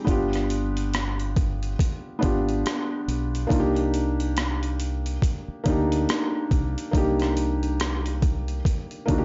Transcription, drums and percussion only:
0.07 kick, closed hi-hat
0.33 cross-stick, closed hi-hat
0.50 closed hi-hat
0.77 closed hi-hat
0.94 cross-stick, closed hi-hat
1.20 closed hi-hat
1.36 kick, closed hi-hat
1.63 closed hi-hat
1.79 kick, closed hi-hat
2.23 kick, closed hi-hat
2.49 closed hi-hat
2.66 cross-stick, closed hi-hat
3.09 closed hi-hat
3.35 closed hi-hat
3.50 kick, closed hi-hat
3.76 closed hi-hat
3.94 closed hi-hat
4.20 closed hi-hat
4.37 cross-stick, closed hi-hat
4.63 closed hi-hat
4.80 closed hi-hat
5.06 closed hi-hat
5.22 kick, closed hi-hat
5.66 kick, closed hi-hat
5.92 closed hi-hat
6.09 cross-stick, closed hi-hat
6.51 kick, closed hi-hat
6.78 closed hi-hat
6.93 kick, closed hi-hat
7.20 cross-stick, closed hi-hat
7.37 closed hi-hat
7.63 closed hi-hat
7.80 cross-stick, closed hi-hat
8.06 closed hi-hat
8.22 kick, closed hi-hat
8.48 closed hi-hat
8.65 kick, closed hi-hat
8.91 closed hi-hat
9.08 kick, closed hi-hat

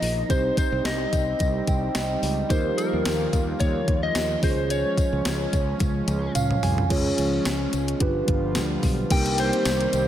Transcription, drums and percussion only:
0.02 open hi-hat, tambourine
0.30 kick, closed hi-hat, tambourine
0.57 kick, closed hi-hat, tambourine
0.85 snare, closed hi-hat, tambourine
1.13 kick, closed hi-hat, tambourine
1.39 kick, closed hi-hat, tambourine
1.67 kick, closed hi-hat, tambourine
1.95 snare, closed hi-hat, tambourine
2.23 open hi-hat, tambourine
2.50 kick, closed hi-hat, tambourine
2.78 closed hi-hat, tambourine
3.05 snare, closed hi-hat, tambourine
3.33 kick, closed hi-hat, tambourine
3.59 kick, closed hi-hat, tambourine
3.88 kick, closed hi-hat
4.15 snare, closed hi-hat, tambourine
4.43 kick, open hi-hat, tambourine
4.70 closed hi-hat, tambourine
4.98 kick, closed hi-hat, tambourine
5.25 snare, closed hi-hat, tambourine
5.53 kick, closed hi-hat, tambourine
5.79 kick, closed hi-hat, high tom, tambourine
6.08 closed hi-hat, mid tom, tambourine
6.35 closed hi-hat, mid tom, tambourine
6.51 mid tom
6.63 floor tom, open hi-hat, tambourine
6.78 floor tom
6.90 kick, closed hi-hat, crash, tambourine
7.18 closed hi-hat, tambourine
7.45 snare, closed hi-hat, tambourine
7.73 closed hi-hat, tambourine
7.88 closed hi-hat
8.00 kick, closed hi-hat
8.28 kick, closed hi-hat
8.55 snare, closed hi-hat, tambourine
8.83 kick, open hi-hat, tambourine
9.10 kick, closed hi-hat, crash, tambourine
9.26 closed hi-hat
9.38 closed hi-hat, tambourine
9.53 closed hi-hat
9.65 snare, closed hi-hat, tambourine
9.81 closed hi-hat
9.93 closed hi-hat, tambourine

